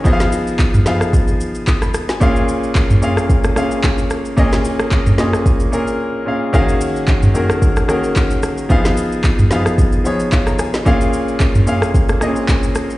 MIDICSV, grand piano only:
0, 0, Header, 1, 2, 480
1, 0, Start_track
1, 0, Tempo, 540541
1, 45, Time_signature, 4, 2, 24, 8
1, 11524, End_track
2, 0, Start_track
2, 0, Title_t, "Grand piano"
2, 0, Program_c, 0, 0
2, 0, Control_c, 0, 64, 127
2, 0, Note_on_c, 0, 80, 67
2, 35, Note_on_c, 0, 53, 107
2, 40, Note_on_c, 0, 59, 95
2, 45, Note_on_c, 0, 63, 94
2, 50, Note_on_c, 0, 68, 97
2, 55, Note_on_c, 0, 75, 97
2, 58, Control_c, 0, 64, 0
2, 113, Note_on_c, 0, 77, 117
2, 114, Note_off_c, 0, 75, 0
2, 166, Note_off_c, 0, 80, 0
2, 198, Control_c, 0, 64, 127
2, 626, Note_off_c, 0, 53, 0
2, 628, Note_off_c, 0, 59, 0
2, 631, Note_off_c, 0, 63, 0
2, 633, Note_off_c, 0, 68, 0
2, 665, Note_off_c, 0, 77, 0
2, 756, Note_on_c, 0, 53, 86
2, 762, Note_on_c, 0, 59, 81
2, 767, Note_on_c, 0, 63, 81
2, 772, Note_on_c, 0, 68, 80
2, 777, Note_on_c, 0, 77, 99
2, 1154, Note_off_c, 0, 53, 0
2, 1157, Note_off_c, 0, 59, 0
2, 1160, Note_off_c, 0, 63, 0
2, 1162, Note_off_c, 0, 68, 0
2, 1165, Note_off_c, 0, 77, 0
2, 1486, Note_on_c, 0, 87, 65
2, 1611, Note_off_c, 0, 87, 0
2, 1619, Note_on_c, 0, 83, 73
2, 1846, Note_off_c, 0, 83, 0
2, 1859, Note_on_c, 0, 80, 70
2, 1956, Note_on_c, 0, 46, 109
2, 1962, Note_on_c, 0, 58, 95
2, 1967, Note_on_c, 0, 61, 99
2, 1972, Note_on_c, 0, 68, 97
2, 1975, Control_c, 0, 64, 0
2, 1977, Note_on_c, 0, 77, 117
2, 2086, Note_off_c, 0, 80, 0
2, 2126, Control_c, 0, 64, 127
2, 2547, Note_off_c, 0, 46, 0
2, 2549, Note_off_c, 0, 58, 0
2, 2552, Note_off_c, 0, 61, 0
2, 2554, Note_off_c, 0, 68, 0
2, 2557, Note_off_c, 0, 77, 0
2, 2677, Note_on_c, 0, 46, 91
2, 2682, Note_on_c, 0, 58, 80
2, 2687, Note_on_c, 0, 61, 80
2, 2693, Note_on_c, 0, 68, 78
2, 2697, Note_on_c, 0, 77, 98
2, 3075, Note_off_c, 0, 46, 0
2, 3077, Note_off_c, 0, 58, 0
2, 3080, Note_off_c, 0, 61, 0
2, 3083, Note_off_c, 0, 68, 0
2, 3085, Note_off_c, 0, 77, 0
2, 3157, Note_on_c, 0, 46, 82
2, 3162, Note_on_c, 0, 58, 77
2, 3167, Note_on_c, 0, 61, 80
2, 3172, Note_on_c, 0, 68, 78
2, 3177, Note_on_c, 0, 77, 97
2, 3747, Note_off_c, 0, 46, 0
2, 3749, Note_off_c, 0, 58, 0
2, 3752, Note_off_c, 0, 61, 0
2, 3754, Note_off_c, 0, 68, 0
2, 3757, Note_off_c, 0, 77, 0
2, 3876, Note_on_c, 0, 46, 107
2, 3881, Note_on_c, 0, 58, 100
2, 3886, Note_on_c, 0, 61, 102
2, 3892, Note_on_c, 0, 68, 95
2, 3897, Note_on_c, 0, 75, 116
2, 4466, Note_off_c, 0, 46, 0
2, 4469, Note_off_c, 0, 58, 0
2, 4471, Note_off_c, 0, 61, 0
2, 4474, Note_off_c, 0, 68, 0
2, 4477, Note_off_c, 0, 75, 0
2, 4596, Note_on_c, 0, 46, 90
2, 4602, Note_on_c, 0, 58, 76
2, 4606, Note_on_c, 0, 61, 80
2, 4612, Note_on_c, 0, 68, 76
2, 4617, Note_on_c, 0, 75, 97
2, 4994, Note_off_c, 0, 46, 0
2, 4997, Note_off_c, 0, 58, 0
2, 4999, Note_off_c, 0, 61, 0
2, 5002, Note_off_c, 0, 68, 0
2, 5005, Note_off_c, 0, 75, 0
2, 5077, Note_on_c, 0, 46, 85
2, 5082, Note_on_c, 0, 58, 76
2, 5088, Note_on_c, 0, 61, 75
2, 5092, Note_on_c, 0, 68, 77
2, 5098, Note_on_c, 0, 70, 96
2, 5475, Note_off_c, 0, 46, 0
2, 5477, Note_off_c, 0, 58, 0
2, 5480, Note_off_c, 0, 61, 0
2, 5483, Note_off_c, 0, 68, 0
2, 5485, Note_off_c, 0, 70, 0
2, 5557, Note_on_c, 0, 46, 77
2, 5562, Note_on_c, 0, 58, 73
2, 5567, Note_on_c, 0, 61, 71
2, 5572, Note_on_c, 0, 68, 71
2, 5578, Note_on_c, 0, 77, 87
2, 5758, Note_off_c, 0, 46, 0
2, 5761, Note_off_c, 0, 58, 0
2, 5763, Note_off_c, 0, 61, 0
2, 5766, Note_off_c, 0, 68, 0
2, 5768, Note_off_c, 0, 77, 0
2, 5797, Note_on_c, 0, 51, 105
2, 5801, Note_on_c, 0, 58, 97
2, 5805, Note_on_c, 0, 61, 100
2, 5809, Note_on_c, 0, 66, 97
2, 5813, Note_on_c, 0, 68, 101
2, 5816, Control_c, 0, 64, 0
2, 5817, Note_on_c, 0, 77, 117
2, 5947, Control_c, 0, 64, 127
2, 6387, Note_off_c, 0, 51, 0
2, 6389, Note_off_c, 0, 58, 0
2, 6391, Note_off_c, 0, 61, 0
2, 6393, Note_off_c, 0, 66, 0
2, 6395, Note_off_c, 0, 68, 0
2, 6397, Note_off_c, 0, 77, 0
2, 6517, Note_on_c, 0, 51, 84
2, 6521, Note_on_c, 0, 58, 81
2, 6525, Note_on_c, 0, 61, 78
2, 6529, Note_on_c, 0, 66, 81
2, 6533, Note_on_c, 0, 68, 80
2, 6537, Note_on_c, 0, 70, 96
2, 6915, Note_off_c, 0, 51, 0
2, 6917, Note_off_c, 0, 58, 0
2, 6919, Note_off_c, 0, 61, 0
2, 6921, Note_off_c, 0, 66, 0
2, 6923, Note_off_c, 0, 68, 0
2, 6925, Note_off_c, 0, 70, 0
2, 6997, Note_on_c, 0, 51, 82
2, 7001, Note_on_c, 0, 58, 82
2, 7005, Note_on_c, 0, 61, 79
2, 7009, Note_on_c, 0, 66, 80
2, 7013, Note_on_c, 0, 68, 80
2, 7017, Note_on_c, 0, 70, 93
2, 7587, Note_off_c, 0, 51, 0
2, 7589, Note_off_c, 0, 58, 0
2, 7591, Note_off_c, 0, 61, 0
2, 7593, Note_off_c, 0, 66, 0
2, 7595, Note_off_c, 0, 68, 0
2, 7597, Note_off_c, 0, 70, 0
2, 7717, Note_on_c, 0, 53, 106
2, 7722, Note_on_c, 0, 59, 97
2, 7727, Note_on_c, 0, 63, 99
2, 7732, Note_on_c, 0, 68, 98
2, 7737, Control_c, 0, 64, 0
2, 7738, Note_on_c, 0, 77, 118
2, 7899, Control_c, 0, 64, 127
2, 8307, Note_off_c, 0, 53, 0
2, 8309, Note_off_c, 0, 59, 0
2, 8312, Note_off_c, 0, 63, 0
2, 8315, Note_off_c, 0, 68, 0
2, 8317, Note_off_c, 0, 77, 0
2, 8438, Note_on_c, 0, 53, 86
2, 8443, Note_on_c, 0, 59, 82
2, 8448, Note_on_c, 0, 63, 80
2, 8453, Note_on_c, 0, 68, 82
2, 8458, Note_on_c, 0, 77, 95
2, 8835, Note_off_c, 0, 53, 0
2, 8838, Note_off_c, 0, 59, 0
2, 8840, Note_off_c, 0, 63, 0
2, 8843, Note_off_c, 0, 68, 0
2, 8845, Note_off_c, 0, 77, 0
2, 8917, Note_on_c, 0, 53, 86
2, 8923, Note_on_c, 0, 59, 77
2, 8927, Note_on_c, 0, 63, 79
2, 8933, Note_on_c, 0, 68, 77
2, 8938, Note_on_c, 0, 73, 95
2, 9168, Note_on_c, 0, 77, 65
2, 9292, Note_off_c, 0, 77, 0
2, 9301, Note_on_c, 0, 82, 72
2, 9315, Note_off_c, 0, 53, 0
2, 9318, Note_off_c, 0, 59, 0
2, 9320, Note_off_c, 0, 63, 0
2, 9323, Note_off_c, 0, 68, 0
2, 9325, Note_off_c, 0, 73, 0
2, 9402, Note_off_c, 0, 82, 0
2, 9409, Note_on_c, 0, 80, 71
2, 9532, Note_off_c, 0, 80, 0
2, 9540, Note_on_c, 0, 75, 63
2, 9638, Note_on_c, 0, 46, 111
2, 9643, Note_on_c, 0, 58, 98
2, 9648, Note_on_c, 0, 61, 102
2, 9654, Note_on_c, 0, 68, 100
2, 9658, Control_c, 0, 64, 0
2, 9659, Note_on_c, 0, 77, 117
2, 9767, Note_off_c, 0, 75, 0
2, 9784, Control_c, 0, 64, 127
2, 10227, Note_off_c, 0, 46, 0
2, 10230, Note_off_c, 0, 58, 0
2, 10232, Note_off_c, 0, 61, 0
2, 10235, Note_off_c, 0, 68, 0
2, 10238, Note_off_c, 0, 77, 0
2, 10357, Note_on_c, 0, 46, 90
2, 10362, Note_on_c, 0, 58, 80
2, 10368, Note_on_c, 0, 61, 80
2, 10372, Note_on_c, 0, 68, 80
2, 10378, Note_on_c, 0, 77, 100
2, 10755, Note_off_c, 0, 46, 0
2, 10757, Note_off_c, 0, 58, 0
2, 10760, Note_off_c, 0, 61, 0
2, 10762, Note_off_c, 0, 68, 0
2, 10765, Note_off_c, 0, 77, 0
2, 10837, Note_on_c, 0, 46, 90
2, 10842, Note_on_c, 0, 58, 79
2, 10847, Note_on_c, 0, 60, 64
2, 10853, Note_on_c, 0, 68, 79
2, 10858, Note_on_c, 0, 75, 94
2, 10905, Note_on_c, 0, 61, 81
2, 10910, Note_off_c, 0, 60, 0
2, 11427, Note_off_c, 0, 46, 0
2, 11430, Note_off_c, 0, 58, 0
2, 11434, Note_off_c, 0, 68, 0
2, 11437, Note_off_c, 0, 75, 0
2, 11461, Note_off_c, 0, 61, 0
2, 11524, End_track
0, 0, End_of_file